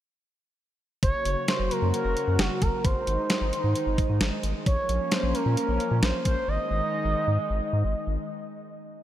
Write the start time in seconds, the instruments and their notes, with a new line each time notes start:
1.03 analog synth bass F#1, analog synth pad C#3 F#3 A#3 F#4, analog synth lead C#5, kick, closed hi-hat
1.25 analog synth bass F#1, closed hi-hat
1.48 analog synth lead C5, snare, closed hi-hat
1.60 analog synth bass F#1
1.71 analog synth lead A#4, closed hi-hat
1.82 analog synth bass F#2
1.94 analog synth lead A#4, closed hi-hat
2.05 analog synth bass F#1
2.17 closed hi-hat
2.28 analog synth bass F#2
2.39 analog synth bass F#1, analog synth lead F#4, snare, closed hi-hat
2.62 analog synth bass F#1, analog synth lead A#4, kick, closed hi-hat
2.85 analog synth bass G#1, analog synth pad D#3 G#3 D#4, analog synth lead C5, kick, closed hi-hat
3.07 analog synth bass G#1, closed hi-hat
3.30 snare, closed hi-hat
3.41 analog synth bass G#1
3.53 closed hi-hat
3.64 analog synth bass G#2
3.75 closed hi-hat
3.87 analog synth bass G#1
3.98 kick, closed hi-hat
4.10 analog synth bass G#2
4.21 analog synth bass G#1, snare, closed hi-hat
4.43 analog synth bass G#1, closed hi-hat
4.66 analog synth bass A#1, analog synth pad F3 A#3 C#4, analog synth lead C#5, kick, closed hi-hat
4.89 analog synth bass A#1, closed hi-hat
5.12 analog synth lead C5, snare, closed hi-hat
5.23 analog synth bass A#1
5.35 analog synth lead A#4, closed hi-hat
5.46 analog synth bass A#2
5.57 analog synth lead A#4, closed hi-hat
5.69 analog synth bass A#1
5.80 closed hi-hat
5.91 analog synth bass A#2
6.03 analog synth bass A#1, analog synth lead C5, snare, closed hi-hat
6.25 analog synth bass A#1, analog synth lead C5, kick, closed hi-hat
6.48 analog synth bass G#1, analog synth pad D#3 G#3 D#4, analog synth lead D#5
6.71 analog synth bass G#1
7.05 analog synth bass G#1
7.28 analog synth bass G#2
7.50 analog synth bass G#1
7.73 analog synth bass G#2
7.85 analog synth bass G#1
8.07 analog synth bass G#1